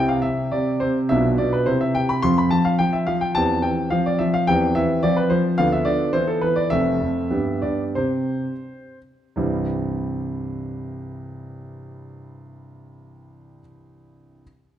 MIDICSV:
0, 0, Header, 1, 2, 480
1, 0, Start_track
1, 0, Key_signature, 0, "major"
1, 0, Tempo, 573066
1, 918, Time_signature, 2, 2, 24, 8
1, 2348, Tempo, 556586
1, 5228, Tempo, 582524
1, 6188, Tempo, 669643
1, 7148, Tempo, 713436
1, 11280, End_track
2, 0, Start_track
2, 0, Title_t, "Grand piano"
2, 0, Program_c, 0, 0
2, 0, Note_on_c, 0, 36, 58
2, 0, Note_on_c, 0, 48, 61
2, 0, Note_on_c, 0, 60, 43
2, 0, Note_on_c, 0, 64, 45
2, 72, Note_on_c, 0, 77, 73
2, 182, Note_off_c, 0, 48, 0
2, 183, Note_on_c, 0, 76, 79
2, 185, Note_off_c, 0, 36, 0
2, 191, Note_off_c, 0, 77, 0
2, 195, Note_on_c, 0, 48, 55
2, 428, Note_off_c, 0, 48, 0
2, 429, Note_off_c, 0, 76, 0
2, 432, Note_on_c, 0, 74, 72
2, 440, Note_on_c, 0, 48, 54
2, 667, Note_off_c, 0, 48, 0
2, 670, Note_on_c, 0, 72, 76
2, 675, Note_off_c, 0, 74, 0
2, 680, Note_on_c, 0, 48, 52
2, 818, Note_off_c, 0, 72, 0
2, 886, Note_off_c, 0, 60, 0
2, 889, Note_off_c, 0, 64, 0
2, 913, Note_off_c, 0, 48, 0
2, 913, Note_on_c, 0, 76, 86
2, 924, Note_on_c, 0, 62, 44
2, 925, Note_on_c, 0, 35, 59
2, 926, Note_on_c, 0, 47, 64
2, 926, Note_on_c, 0, 65, 42
2, 1059, Note_off_c, 0, 76, 0
2, 1155, Note_off_c, 0, 47, 0
2, 1155, Note_on_c, 0, 74, 68
2, 1156, Note_off_c, 0, 35, 0
2, 1168, Note_on_c, 0, 47, 53
2, 1277, Note_off_c, 0, 74, 0
2, 1279, Note_on_c, 0, 71, 70
2, 1367, Note_off_c, 0, 62, 0
2, 1368, Note_off_c, 0, 65, 0
2, 1390, Note_on_c, 0, 72, 75
2, 1395, Note_off_c, 0, 47, 0
2, 1398, Note_off_c, 0, 71, 0
2, 1398, Note_on_c, 0, 48, 58
2, 1398, Note_on_c, 0, 64, 40
2, 1513, Note_off_c, 0, 72, 0
2, 1514, Note_on_c, 0, 76, 75
2, 1627, Note_off_c, 0, 48, 0
2, 1630, Note_on_c, 0, 79, 81
2, 1634, Note_off_c, 0, 76, 0
2, 1639, Note_on_c, 0, 48, 51
2, 1751, Note_on_c, 0, 83, 79
2, 1752, Note_off_c, 0, 79, 0
2, 1841, Note_off_c, 0, 64, 0
2, 1863, Note_on_c, 0, 84, 103
2, 1867, Note_off_c, 0, 48, 0
2, 1870, Note_on_c, 0, 41, 57
2, 1871, Note_off_c, 0, 83, 0
2, 1872, Note_on_c, 0, 60, 45
2, 1873, Note_on_c, 0, 65, 46
2, 1874, Note_on_c, 0, 53, 58
2, 1986, Note_off_c, 0, 84, 0
2, 1993, Note_on_c, 0, 83, 80
2, 2096, Note_off_c, 0, 53, 0
2, 2098, Note_on_c, 0, 81, 83
2, 2101, Note_off_c, 0, 41, 0
2, 2109, Note_on_c, 0, 53, 50
2, 2110, Note_off_c, 0, 83, 0
2, 2218, Note_on_c, 0, 77, 82
2, 2222, Note_off_c, 0, 81, 0
2, 2333, Note_off_c, 0, 53, 0
2, 2333, Note_on_c, 0, 79, 83
2, 2342, Note_off_c, 0, 77, 0
2, 2345, Note_on_c, 0, 53, 52
2, 2456, Note_on_c, 0, 76, 71
2, 2462, Note_off_c, 0, 79, 0
2, 2572, Note_off_c, 0, 53, 0
2, 2574, Note_on_c, 0, 77, 80
2, 2584, Note_off_c, 0, 76, 0
2, 2585, Note_on_c, 0, 53, 52
2, 2699, Note_on_c, 0, 79, 79
2, 2703, Note_off_c, 0, 77, 0
2, 2796, Note_off_c, 0, 60, 0
2, 2796, Note_off_c, 0, 65, 0
2, 2817, Note_on_c, 0, 81, 101
2, 2821, Note_off_c, 0, 53, 0
2, 2825, Note_off_c, 0, 79, 0
2, 2827, Note_on_c, 0, 60, 46
2, 2828, Note_on_c, 0, 40, 56
2, 2828, Note_on_c, 0, 52, 59
2, 2829, Note_on_c, 0, 67, 44
2, 3051, Note_off_c, 0, 52, 0
2, 3055, Note_on_c, 0, 79, 73
2, 3062, Note_off_c, 0, 40, 0
2, 3063, Note_off_c, 0, 81, 0
2, 3064, Note_on_c, 0, 52, 54
2, 3277, Note_off_c, 0, 60, 0
2, 3278, Note_off_c, 0, 67, 0
2, 3298, Note_on_c, 0, 77, 84
2, 3302, Note_off_c, 0, 52, 0
2, 3305, Note_off_c, 0, 79, 0
2, 3307, Note_on_c, 0, 53, 58
2, 3310, Note_on_c, 0, 60, 41
2, 3310, Note_on_c, 0, 72, 42
2, 3426, Note_off_c, 0, 77, 0
2, 3431, Note_on_c, 0, 74, 76
2, 3541, Note_off_c, 0, 53, 0
2, 3541, Note_on_c, 0, 76, 80
2, 3553, Note_off_c, 0, 74, 0
2, 3554, Note_on_c, 0, 53, 55
2, 3667, Note_off_c, 0, 76, 0
2, 3670, Note_on_c, 0, 77, 84
2, 3758, Note_off_c, 0, 60, 0
2, 3758, Note_off_c, 0, 72, 0
2, 3786, Note_off_c, 0, 53, 0
2, 3788, Note_on_c, 0, 79, 93
2, 3791, Note_off_c, 0, 77, 0
2, 3797, Note_on_c, 0, 60, 46
2, 3798, Note_on_c, 0, 40, 60
2, 3799, Note_on_c, 0, 52, 62
2, 3799, Note_on_c, 0, 67, 46
2, 4026, Note_off_c, 0, 52, 0
2, 4027, Note_off_c, 0, 40, 0
2, 4027, Note_on_c, 0, 76, 86
2, 4029, Note_off_c, 0, 79, 0
2, 4039, Note_on_c, 0, 52, 56
2, 4237, Note_off_c, 0, 60, 0
2, 4239, Note_off_c, 0, 67, 0
2, 4243, Note_off_c, 0, 76, 0
2, 4266, Note_off_c, 0, 52, 0
2, 4266, Note_on_c, 0, 74, 91
2, 4276, Note_on_c, 0, 53, 61
2, 4276, Note_on_c, 0, 60, 44
2, 4276, Note_on_c, 0, 65, 43
2, 4385, Note_on_c, 0, 71, 77
2, 4386, Note_off_c, 0, 74, 0
2, 4496, Note_off_c, 0, 53, 0
2, 4499, Note_on_c, 0, 72, 77
2, 4505, Note_off_c, 0, 71, 0
2, 4509, Note_on_c, 0, 53, 52
2, 4715, Note_off_c, 0, 60, 0
2, 4715, Note_off_c, 0, 65, 0
2, 4739, Note_off_c, 0, 53, 0
2, 4740, Note_on_c, 0, 77, 100
2, 4741, Note_off_c, 0, 72, 0
2, 4751, Note_on_c, 0, 50, 65
2, 4751, Note_on_c, 0, 65, 48
2, 4752, Note_on_c, 0, 38, 60
2, 4753, Note_on_c, 0, 59, 49
2, 4863, Note_off_c, 0, 77, 0
2, 4866, Note_on_c, 0, 76, 75
2, 4972, Note_off_c, 0, 50, 0
2, 4973, Note_on_c, 0, 74, 81
2, 4981, Note_off_c, 0, 38, 0
2, 4985, Note_on_c, 0, 50, 57
2, 4986, Note_off_c, 0, 76, 0
2, 5197, Note_off_c, 0, 65, 0
2, 5198, Note_off_c, 0, 59, 0
2, 5216, Note_on_c, 0, 72, 86
2, 5220, Note_off_c, 0, 50, 0
2, 5221, Note_off_c, 0, 74, 0
2, 5224, Note_on_c, 0, 52, 57
2, 5224, Note_on_c, 0, 64, 45
2, 5226, Note_on_c, 0, 59, 44
2, 5336, Note_on_c, 0, 69, 70
2, 5338, Note_off_c, 0, 72, 0
2, 5452, Note_off_c, 0, 52, 0
2, 5452, Note_on_c, 0, 71, 77
2, 5457, Note_off_c, 0, 69, 0
2, 5465, Note_on_c, 0, 52, 53
2, 5570, Note_on_c, 0, 74, 77
2, 5574, Note_off_c, 0, 71, 0
2, 5663, Note_off_c, 0, 64, 0
2, 5664, Note_off_c, 0, 59, 0
2, 5688, Note_on_c, 0, 76, 97
2, 5692, Note_off_c, 0, 52, 0
2, 5693, Note_off_c, 0, 74, 0
2, 5699, Note_on_c, 0, 60, 45
2, 5700, Note_on_c, 0, 57, 43
2, 5702, Note_on_c, 0, 41, 66
2, 5703, Note_on_c, 0, 29, 55
2, 5923, Note_off_c, 0, 41, 0
2, 5934, Note_off_c, 0, 29, 0
2, 5936, Note_on_c, 0, 41, 51
2, 6155, Note_off_c, 0, 60, 0
2, 6156, Note_off_c, 0, 57, 0
2, 6178, Note_off_c, 0, 41, 0
2, 6185, Note_on_c, 0, 59, 39
2, 6186, Note_on_c, 0, 67, 38
2, 6188, Note_on_c, 0, 43, 53
2, 6407, Note_off_c, 0, 43, 0
2, 6409, Note_on_c, 0, 74, 59
2, 6410, Note_off_c, 0, 76, 0
2, 6418, Note_on_c, 0, 43, 47
2, 6554, Note_off_c, 0, 74, 0
2, 6624, Note_off_c, 0, 59, 0
2, 6624, Note_off_c, 0, 67, 0
2, 6648, Note_off_c, 0, 43, 0
2, 6650, Note_on_c, 0, 72, 64
2, 6659, Note_on_c, 0, 48, 45
2, 6659, Note_on_c, 0, 60, 36
2, 6660, Note_on_c, 0, 67, 37
2, 7003, Note_off_c, 0, 48, 0
2, 7052, Note_off_c, 0, 60, 0
2, 7053, Note_off_c, 0, 67, 0
2, 7359, Note_off_c, 0, 72, 0
2, 7627, Note_on_c, 0, 36, 49
2, 7631, Note_on_c, 0, 43, 42
2, 7633, Note_on_c, 0, 52, 39
2, 7634, Note_on_c, 0, 55, 42
2, 7636, Note_on_c, 0, 60, 40
2, 7636, Note_on_c, 0, 64, 40
2, 7805, Control_c, 0, 64, 127
2, 10475, Note_off_c, 0, 36, 0
2, 10479, Note_off_c, 0, 43, 0
2, 10481, Note_off_c, 0, 52, 0
2, 10482, Note_off_c, 0, 55, 0
2, 10484, Note_off_c, 0, 60, 0
2, 10484, Note_off_c, 0, 64, 0
2, 11040, Control_c, 0, 64, 0
2, 11280, End_track
0, 0, End_of_file